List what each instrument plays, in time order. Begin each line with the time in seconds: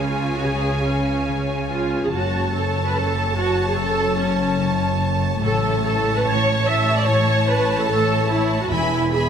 Already playing: double bass section C#2, harp C#3 G#3 F4 G#4 G#5, cello section C#3, violin section C#5 F5 G#5
0.03 viola section F4, harp F5
0.13 harp G#5
0.34 viola section F#4, harp G#4
0.44 harp C#3, viola section G#4
0.55 harp G#3
0.66 harp F4
0.76 harp G#4
0.85 viola section C#4, harp F5
0.97 harp G#5
1.08 harp F5
1.18 harp G#4
1.28 harp C#3
1.39 harp G#3
1.50 harp F4
1.60 harp G#4
1.69 viola section F4, harp F5
1.80 harp G#5
1.91 harp F5
2.02 harp G#4, viola section G#4
2.11 double bass section F#1, harp F#2, cello section F#2, viola section F#4, violin section C#5 A5
2.22 harp C#3
2.32 harp C#4
2.42 harp A4
2.53 viola section A4, harp C#5
2.64 harp A5
2.75 harp C#5
2.85 harp A4, viola section B4
2.95 harp F#2, viola section A4
3.05 harp C#3
3.15 harp C#4
3.25 harp A4
3.35 viola section F#4, harp C#5
3.46 harp A5
3.56 harp C#5
3.67 viola section G#4, harp A4
3.77 harp F#2, viola section A4
3.87 harp C#3
3.97 harp C#4
4.18 viola section C#4, harp C#5
4.28 harp A5
4.39 harp C#5
4.50 harp A4
4.59 harp F#2
4.71 harp C#3
4.81 harp C#4
4.92 harp A4
5.01 harp C#5
5.11 harp A5
5.22 harp C#5
5.32 harp A4
5.42 double bass section A1, harp A2, cello section A2, viola section A4, violin section C#5 A5
5.53 harp E3
5.63 harp C#4
5.74 harp A4
5.83 viola section A4, harp C#5
5.95 harp A5
6.04 harp C#5
6.14 harp A4, viola section B4
6.25 harp A2, viola section C#5
6.35 harp E3
6.46 harp C#4
6.57 harp A4
6.66 harp C#5, viola section E5
6.77 harp A5
6.87 harp C#5
6.97 harp A4, viola section D5
7.07 harp A2, viola section C#5
7.18 harp E3
7.28 harp C#4
7.37 harp A4
7.47 viola section B4, harp C#5
7.57 harp A5
7.68 harp C#5
7.79 harp A4, viola section A4
7.88 harp A2, viola section A4
7.99 harp E3
8.09 harp C#4
8.20 harp A4
8.29 viola section E4, harp C#5
8.41 harp A5
8.50 harp C#5
8.61 viola section F#4, harp A4
8.71 double bass section E1, timpani E2, cello section E2, harp E3, viola section E4, violin section E5 G#5 B5
8.82 harp B3
8.92 harp G#4
9.03 harp B4
9.12 viola section G#4, violin section E5 G#5 B5, harp G#5